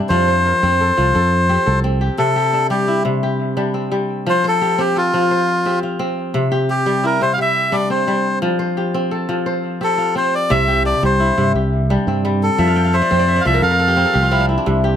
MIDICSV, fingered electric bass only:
0, 0, Header, 1, 2, 480
1, 0, Start_track
1, 0, Tempo, 346821
1, 145, Time_signature, 12, 3, 24, 8
1, 20712, End_track
2, 0, Start_track
2, 0, Title_t, "Fingered electric bass"
2, 0, Program_c, 0, 33
2, 140, Note_on_c, 0, 41, 90
2, 715, Note_off_c, 0, 41, 0
2, 872, Note_on_c, 0, 41, 88
2, 1252, Note_off_c, 0, 41, 0
2, 1359, Note_on_c, 0, 36, 78
2, 1546, Note_off_c, 0, 36, 0
2, 1596, Note_on_c, 0, 41, 98
2, 2166, Note_off_c, 0, 41, 0
2, 2316, Note_on_c, 0, 36, 90
2, 2886, Note_off_c, 0, 36, 0
2, 14549, Note_on_c, 0, 36, 91
2, 15117, Note_off_c, 0, 36, 0
2, 15264, Note_on_c, 0, 36, 98
2, 15644, Note_off_c, 0, 36, 0
2, 15749, Note_on_c, 0, 43, 80
2, 15936, Note_off_c, 0, 43, 0
2, 15978, Note_on_c, 0, 36, 90
2, 16550, Note_off_c, 0, 36, 0
2, 16707, Note_on_c, 0, 43, 94
2, 17276, Note_off_c, 0, 43, 0
2, 17422, Note_on_c, 0, 41, 95
2, 17994, Note_off_c, 0, 41, 0
2, 18154, Note_on_c, 0, 41, 80
2, 18531, Note_off_c, 0, 41, 0
2, 18629, Note_on_c, 0, 36, 81
2, 18817, Note_off_c, 0, 36, 0
2, 18853, Note_on_c, 0, 41, 99
2, 19429, Note_off_c, 0, 41, 0
2, 19588, Note_on_c, 0, 36, 94
2, 20158, Note_off_c, 0, 36, 0
2, 20304, Note_on_c, 0, 36, 95
2, 20712, Note_off_c, 0, 36, 0
2, 20712, End_track
0, 0, End_of_file